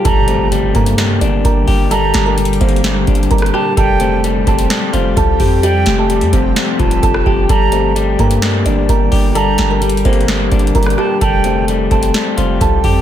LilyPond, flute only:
\new Staff \with { instrumentName = "Flute" } { \time 4/4 \key g \minor \tempo 4 = 129 bes''4 r2. | bes''4 r2 r8 a''8 | g''4 r2. | g''4 r4. a''4. |
bes''4 r2. | bes''4 r2 r8 a''8 | g''4 r2. | }